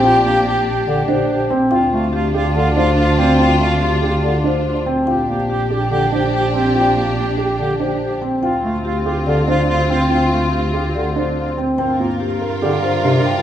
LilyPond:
<<
  \new Staff \with { instrumentName = "Marimba" } { \time 4/4 \key d \phrygian \tempo 4 = 143 g''8 r8 g'8 r8 d''8 c''8 r8 g''8 | g''8 r8 g'8 r8 d''8 c''8 r8 g''8 | g''8 r8 g'8 r8 d''8 c''8 r8 g''8 | g''8 r8 g'8 r8 d''8 c''8 r8 g''8 |
g''8 r8 g'8 r8 d''8 c''8 r8 g''8 | g''8 r8 g'8 r8 d''8 c''8 r8 g''8 | g''8 r8 g'8 r8 d''8 c''8 r8 g''8 | \key g \minor g''8 r8 g'8 r8 d''8 c''8 r8 g''8 | }
  \new Staff \with { instrumentName = "Soprano saxophone" } { \time 4/4 \key d \phrygian g'8 g'8 g'8 g'8 g'8 g'8 g'8 r8 | f'8 f'8 f'8 f'8 f'8 f'8 f'8 f'8 | f'8 f'8 f'8 f'8 f'8 f'8 f'8 r8 | g'8 g'8 g'8 g'8 g'8 g'8 g'8 g'8 |
g'8 g'8 g'8 g'8 g'8 g'8 g'8 r8 | f'8 f'8 f'8 f'8 f'8 f'8 f'8 f'8 | f'8 f'8 f'8 f'8 f'8 f'8 f'8 r8 | \key g \minor f'1 | }
  \new Staff \with { instrumentName = "String section" } { \time 4/4 \key d \phrygian <d' g'>2.~ <d' g'>8 r8 | <d' f'>1~ | <d' f'>2.~ <d' f'>8 r8 | <d' g'>1~ |
<d' g'>2.~ <d' g'>8 r8 | <c' f'>1~ | <c' f'>2.~ <c' f'>8 r8 | \key g \minor <f' bes'>1 | }
  \new Staff \with { instrumentName = "Grand piano" } { \time 4/4 \key d \phrygian f'8 r2 d'8 r8 c'8 | f'8 r4 g'8 r8 d'8 r8 c'8 | f'8 r4 g'8 r8 d'8 r8 c'8 | f'8 r4 g'8 r8 d'8 r8 c'8 |
f'8 r4 g'8 r8 d'8 r8 c'8 | f'8 r4 g'8 r8 d'8 r8 c'8 | f'8 r4 g'8 r8 d'8 r8 c'8 | \key g \minor c'8 f'8 r8 bes'8 g'8 r8 d'8 r8 | }
  \new Staff \with { instrumentName = "Bass clarinet" } { \clef bass \time 4/4 \key d \phrygian r8 bes8 r4 d8 r4. | r8 a8 r4 d8 r4. | r8 a8 r4 d8 r4. | r8 bes8 r4 d8 r4. |
r8 bes8 r4 d8 r4. | r8 a8 r4 d8 r4. | r8 a8 r4 d8 r4. | \key g \minor r8 bes8 r4 d8 r8 c8 r8 | }
  \new Staff \with { instrumentName = "Double bass" } { \clef bass \time 4/4 \key d \phrygian bes,,1 | d,1~ | d,1 | bes,,1~ |
bes,,1 | d,1~ | d,1 | \key g \minor g,1 | }
>>